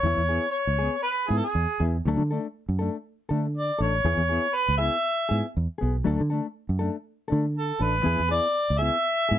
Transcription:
Already playing: C#5
0.03 E2 E3 B3 E4, muted clean electric guitar stroke
0.18 E2
0.29 B3 E4 G#4
0.51 C#5
0.67 C#2
0.79 B3 G#4
1.03 B4
1.27 G#2 B3 E4 G#4
1.37 A4
1.45 G#4
1.55 E2
1.80 E2 B3 E4 G#4
2.05 D2 F#3 A3 D4 A4
2.17 D3
2.31 A3 D4 A4
2.69 F#2
2.79 A3 D4 A4
3.29 D3 A3 D4 A4
3.57 D5
3.79 A1 A3 D4 A4 C#5
4.05 E2 E3 B3 E4 G#4
4.17 E2
4.29 B3 E4 G#4
4.55 B4
4.68 C#2
4.77 E4 G#4 E5
4.82 B3
5.29 G#2 B3 E4 G#4
5.57 E2
5.78 B3 G#4
5.82 B1
6.04 D2 F#3 A3 D4 A4
6.21 D3
6.30 A3 D4 A4
6.69 F#2
6.79 A3 D4 A4
7.28 A3 D4 A4
7.32 D3
7.58 A4
7.80 A1 A3 D4 A4 B4
8.03 E2 E3 B3 E4 G#4
8.20 E2
8.29 B3 E4 G#4 D5
8.70 C#2
8.78 E4 G#4 E5
8.82 B3
9.29 G#2 B3 E4 G#4

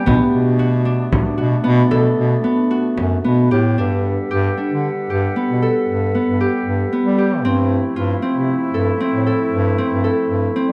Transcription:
Already playing: G4
0.06 B2 A3 B3 D4, frame drum
0.32 B2, frame drum
0.59 F#4, frame drum
0.85 D4, frame drum
1.12 frame drum
1.37 B2 F#4
1.64 B2 B3
1.91 B2 A4, frame drum
2.17 B2
2.44 B3, frame drum
2.71 F#4
2.98 F#2, frame drum
3.24 B2 B3, frame drum
3.51 A2 G4, frame drum
3.78 G2 G3 D4 A4 B4 F#5
4.31 G2 G4
4.57 D4
4.71 D3
5.10 G2 G4
5.36 B3
5.49 B2
5.62 A4
5.88 G2
6.15 B3
6.27 G2
6.41 G4
6.65 G2
6.92 B3
7.05 G3
7.18 G4
7.44 G2 F3 A3 C4 E4
7.96 G2 F4
8.22 C4
8.35 C3
8.74 G2 A4
9.00 C4
9.12 A2
9.27 A4
9.51 G2
9.78 C4
9.90 G2
10.04 A4
10.29 G2
10.56 C4
10.68 G3

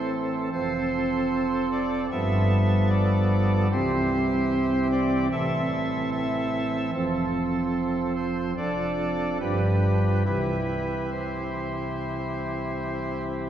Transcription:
Already playing: A1 A2 E3 C4 A4
0.52 F1 F2 F3 C4 A4 C5
1.72 D5
2.11 G1 G2 F3 B3 A4 E5
2.90 D5
3.71 C2 C3 E3 C4 G4 C5
4.92 D5
5.32 A1 A2 E3 C4 A4 E5
6.12 E5
6.93 F1 F2 F3 C4 A4
8.16 C5
8.57 F1 F2 F3 D4 A4 D5
9.40 G1 G2 F3 D4 G4 B4
10.25 C2 C3 E3 E4 G4 B4
11.11 C5

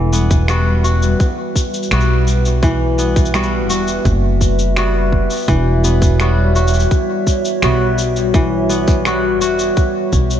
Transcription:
Already playing: E1 E3 G3 F#4 B4 E5
0.13 B3, cabasa
0.31 kick, cabasa
0.48 G3 B3 F#4, finger snap, cabasa
0.84 F#4, cabasa
1.02 cabasa
1.20 kick, cabasa
1.56 kick, cabasa
1.74 cabasa
1.83 cabasa
1.91 B1 G3 B3 F#4, finger snap, cabasa
2.00 cabasa
2.27 cabasa
2.45 cabasa
2.63 E3, kick, cabasa
2.98 B3, cabasa
3.16 kick, cabasa
3.25 cabasa
3.34 G3 B3 F#4, finger snap, cabasa
3.43 cabasa
3.69 E1 F#4, cabasa
3.88 cabasa
4.05 F#1, kick, cabasa
4.41 kick, cabasa
4.59 cabasa
4.76 G3 B3 F#4, finger snap, cabasa
5.12 kick
5.30 cabasa
5.33 cabasa
5.36 cabasa
5.39 cabasa
5.42 cabasa
5.45 E1 E3, kick, cabasa
5.49 C#5, cabasa
5.84 B3, cabasa
6.02 kick, cabasa
6.20 G3 B3 F#4, finger snap, cabasa
6.56 F#4, cabasa
6.67 cabasa
6.73 cabasa
6.79 cabasa
6.91 kick, cabasa
7.27 kick, cabasa
7.45 cabasa
7.62 B1 G3 B3 F#4, finger snap, cabasa
7.98 cabasa
8.16 cabasa
8.34 E3, kick, cabasa
8.70 B3, cabasa
8.88 kick, cabasa
9.05 G3 B3 F#4, finger snap, cabasa
9.41 E1 F#4, cabasa
9.59 cabasa
9.77 kick, cabasa
10.12 B1, kick, cabasa
10.30 cabasa

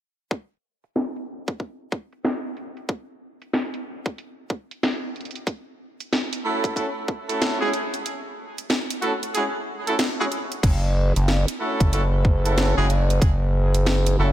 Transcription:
0.31 kick
0.84 closed hi-hat
0.96 snare
1.16 closed hi-hat
1.48 kick
1.60 kick, closed hi-hat
1.92 kick
2.13 closed hi-hat
2.25 snare, closed hi-hat
2.57 closed hi-hat
2.77 closed hi-hat
2.89 kick, closed hi-hat
3.42 closed hi-hat
3.53 snare
3.74 closed hi-hat
4.06 kick, closed hi-hat
4.18 closed hi-hat
4.50 kick
4.71 closed hi-hat
4.83 snare, closed hi-hat
5.16 closed hi-hat
5.21 closed hi-hat
5.25 closed hi-hat
5.31 closed hi-hat
5.35 closed hi-hat
5.47 kick, closed hi-hat
6.00 closed hi-hat
6.13 snare
6.33 closed hi-hat
6.44 A3 C#4 E4 F#4 A4
6.64 kick, closed hi-hat
6.76 A3 C#4 E4 F#4 A4, kick, closed hi-hat
7.08 kick
7.29 A3 C#4 E4 F#4 A4, closed hi-hat
7.42 snare, closed hi-hat
7.61 G#3 C#4 E4 F#4 G#4
7.73 closed hi-hat
7.94 closed hi-hat
8.06 closed hi-hat
8.58 closed hi-hat
8.70 snare
8.90 closed hi-hat
9.02 A3 C#4 E4 F#4 A4, closed hi-hat
9.23 closed hi-hat
9.34 G#3 C#4 E4 F#4 G#4, closed hi-hat
9.87 A3 C#4 E4 F#4 A4, closed hi-hat
9.99 snare, closed hi-hat
10.19 G#3 C#4 E4 F#4 G#4
10.32 closed hi-hat
10.52 closed hi-hat
10.63 F#1, kick, closed hi-hat, crash
11.16 F#1, closed hi-hat
11.28 snare
11.48 closed hi-hat
11.60 A3 C#4 E4 F#4 A4
11.80 F#1, kick, closed hi-hat
11.93 A3 C#4 E4 F#4 A4, closed hi-hat
12.25 kick
12.45 A3 C#4 E4 F#4 A4, closed hi-hat
12.58 snare, closed hi-hat
12.77 F#1 G#3 C#4 E4 F#4 G#4
12.90 closed hi-hat
13.10 closed hi-hat
13.22 F#1, kick, closed hi-hat
13.74 closed hi-hat
13.86 snare
14.06 closed hi-hat
14.19 F#1 A3 C#4 E4 F#4 A4

